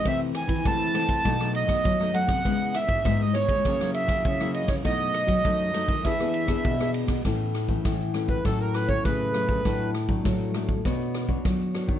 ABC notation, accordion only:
X:1
M:4/4
L:1/16
Q:1/4=100
K:E
V:1 name="Accordion"
e2 g2 a6 d4 f2- | f2 e3 d c4 e4 d c | d8 e6 z2 | [K:A] z6 z B A _B =B c B4- |
B2 z12 z2 |]